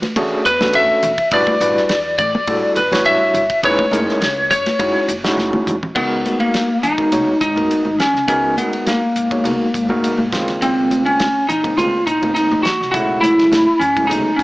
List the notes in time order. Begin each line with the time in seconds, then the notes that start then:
0.02 F#4 B4, snare, ride, high conga
0.16 E3 A3 C#4 D4 F#4 G#4, kick, ride, high conga
0.45 E2 B4, hi-hat pedal, ride
0.61 A3 C#4 D4 F#4 A4, snare, high conga, low conga
0.73 E2 E5, ride
1.03 B1, hi-hat pedal, ride, low conga
1.18 kick, ride
1.31 A1 G3 D4 E4 F#4 B4 D5, kick, ride
1.47 muted upright bass stroke, kick, high conga
1.60 A1 G3 D4 E4 F#4 B4, hi-hat pedal, ride
1.77 snare
1.89 E2, snare, ride
2.06 F#4 B4
2.18 A2 D5, kick, hi-hat pedal, ride, low conga
2.34 F#4 A4, high conga
2.47 A2 G3 D4 E4 F#4 A4, kick, ride, high conga
2.76 A1 B4, hi-hat pedal, ride
2.92 G3 D4 E4 F#4 C#5, snare, ride, high conga, low conga
3.05 A1 E5, ride
3.33 G1, hi-hat pedal, ride, low conga
3.50 kick, ride
3.63 F#1 G#3 C#4 D#4 E4 B4 C#5, kick, ride
3.79 muted upright bass stroke, kick, high conga
3.91 F#1 G#3 C#4 D#4 E4 A#4, hi-hat pedal, ride, high conga
4.09 snare
4.21 C#2, snare, ride
4.36 E4 B4
4.51 F#2 C#5, kick, hi-hat pedal, ride
4.66 E4 B4, snare, ride, high conga
4.79 F#2 G#3 C#4 D#4 E4 F#4, kick, ride, high conga
5.08 F#1, hi-hat pedal, ride
5.24 G#3 C#4 D#4 E4 F#4, snare, high conga
5.37 F#1, snare, high conga
5.53 high tom, high conga
5.67 E1, hi-hat pedal, mid tom, low conga
5.83 floor tom, low conga
5.95 C#2 G#3 B3 D#4 F#4 A#4, kick, crash
6.26 hi-hat pedal, ride, high conga
6.40 A#3, ride
6.54 snare, hi-hat pedal, ride, high conga
6.83 G#1 D#4, hi-hat pedal, ride, low conga
6.98 G#3 B3 D#4 F#4 A#4, kick, ride
7.12 C#2 G#3 B3 D#4 F#4 C#5, hi-hat pedal, ride, high conga
7.27 muted upright bass stroke
7.41 G#1 D#4, kick, hi-hat pedal, ride
7.56 F#2 G#3 B3 D#4 F#4 A#4, ride, high conga
7.70 muted upright bass stroke, hi-hat pedal, ride
7.85 G#1, high conga
7.99 C#4 F#4 A#4, snare, hi-hat pedal, ride, low conga
8.14 C#2, snare
8.28 C#2 G#3 B3 C#4 D#4 F#4 A#4, kick, hi-hat pedal, ride
8.57 B3, hi-hat pedal, ride, high conga
8.73 ride
8.86 A#3, snare, hi-hat pedal, ride, high conga
9.16 G#1, hi-hat pedal, ride
9.31 G#3 B3 D#4 F#4 C#5, kick, ride
9.44 C#2 G#3 B3 D#4 F#4 A#4, hi-hat pedal, ride, high conga
9.59 muted upright bass stroke
9.74 G#1 F#4 A#4, kick, hi-hat pedal, ride
9.88 F#2 B2 G#3 D#4 F#4 A#4, high conga
10.02 muted upright bass stroke, hi-hat pedal, ride
10.17 G#1, high conga
10.32 D#2 C#3 G#3 A#3 C4 F4, kick, snare, hi-hat pedal, ride, low conga
10.48 snare, ride
10.62 C4, hi-hat pedal, ride
10.91 hi-hat pedal, ride, high conga
11.05 C#4, ride
11.19 snare, hi-hat pedal, ride, high conga
11.48 A#1 D#4, hi-hat pedal, ride, low conga
11.63 C#3 G#3 A#3 C4 D#4, kick, ride
11.77 D#2 C#3 G#3 A#3 C4 F4, hi-hat pedal, ride, high conga
11.93 muted upright bass stroke
12.07 A#1 D#4, kick, hi-hat pedal, ride
12.22 G#2 C#3 G#3 A#3 C4 D#4, ride, high conga
12.35 D#4, muted upright bass stroke, hi-hat pedal, ride
12.51 A#1, high conga
12.63 C4 F4 F#4, snare, hi-hat pedal, ride, low conga
12.81 C2, snare
12.92 B1 C#3 F#3 G#3 A3 E4 F#4, kick, hi-hat pedal, ride
13.21 E4, hi-hat pedal, ride, high conga
13.39 snare, ride
13.51 snare, hi-hat pedal, ride, high conga
13.79 F#2 C#4, hi-hat pedal, ride, low conga
13.97 C#3 F#3 G#3 A3 E4, kick, ride
14.07 B1 C#3 F#3 G#3 A3 B3 D#4, hi-hat pedal, ride, high conga
14.25 muted upright bass stroke
14.36 F#2 A3 C#4 E4, kick, hi-hat pedal, ride